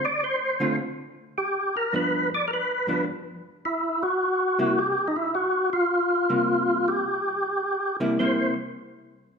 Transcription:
0.05 tonewheel organ D5
0.24 tonewheel organ C5
0.60 hollow-body jazz guitar D3 A3 C4 F4
1.38 tonewheel organ G4
1.77 tonewheel organ A#4
1.93 hollow-body jazz guitar G2 F3 B3 D4, tonewheel organ B4
2.34 tonewheel organ D5
2.48 tonewheel organ A#4
2.53 tonewheel organ B4
2.87 hollow-body jazz guitar G2 F3 B3 D4
3.65 tonewheel organ E4
4.03 tonewheel organ F#4
4.59 hollow-body jazz guitar C3 G3 A#3 E4
4.79 tonewheel organ G4
5.08 tonewheel organ D#4
5.16 tonewheel organ E4
5.35 tonewheel organ F#4
5.73 tonewheel organ F4
6.30 hollow-body jazz guitar C3 G3 A#3
6.88 tonewheel organ G4
8.00 hollow-body jazz guitar C3 G3 A#3 E4
8.19 hollow-body jazz guitar C3 G3 A#3 E4, tonewheel organ C5

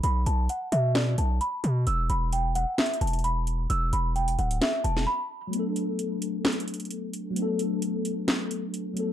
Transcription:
0.04 808-style bass B1, celesta B5, closed hi-hat
0.26 808-style bass B1, celesta A5, closed hi-hat
0.49 celesta F#5, closed hi-hat
0.72 808-style bass B2, celesta E5, closed hi-hat
0.95 celesta D5, snare, clap, closed hi-hat
1.18 808-style bass B1, celesta A5, closed hi-hat
1.41 celesta B5, closed hi-hat
1.64 808-style bass B2, closed hi-hat
1.87 808-style bass E1, celesta E6, closed hi-hat
2.10 808-style bass E1, celesta B5, closed hi-hat
2.33 celesta G5, closed hi-hat
2.55 celesta F#5, closed hi-hat
2.78 celesta E5, snare, clap, closed hi-hat
2.86 closed hi-hat
2.94 closed hi-hat
3.01 808-style bass E1, celesta A5, closed hi-hat
3.07 closed hi-hat
3.13 closed hi-hat
3.19 closed hi-hat
3.24 celesta B5, closed hi-hat
3.47 closed hi-hat
3.70 808-style bass E1, celesta E6, closed hi-hat
3.93 808-style bass E1, celesta B5, closed hi-hat
4.16 celesta G5, closed hi-hat
4.28 closed hi-hat
4.39 808-style bass D1, celesta F#5, closed hi-hat
4.51 closed hi-hat
4.62 celesta E5, snare, clap, closed hi-hat
4.84 808-style bass E1, celesta A5, closed hi-hat
4.97 snare
5.07 celesta B5
5.47 tine electric piano F#3 A3
5.53 tine electric piano B3 D4, closed hi-hat
5.59 tine electric piano A4
5.76 closed hi-hat
5.99 closed hi-hat
6.22 closed hi-hat
6.45 snare, clap, closed hi-hat
6.52 closed hi-hat
6.60 closed hi-hat
6.68 closed hi-hat
6.74 closed hi-hat
6.80 closed hi-hat
6.85 closed hi-hat
6.91 closed hi-hat
7.13 closed hi-hat
7.30 tine electric piano F#3 A3
7.36 tine electric piano B3 D4, closed hi-hat
7.42 tine electric piano A4
7.59 closed hi-hat
7.82 closed hi-hat
8.05 closed hi-hat
8.28 snare, clap, closed hi-hat
8.51 closed hi-hat
8.74 closed hi-hat
8.93 tine electric piano F#3 A3 B3, closed hi-hat
8.98 tine electric piano D4 A4

